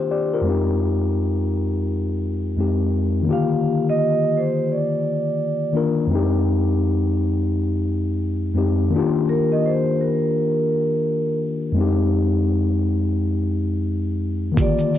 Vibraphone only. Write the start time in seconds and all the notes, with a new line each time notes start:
3.33 F5
3.89 D#5
4.37 C5
4.72 D5
9.29 A#4
9.52 D#5
9.66 C5
10.01 A#4
14.61 D5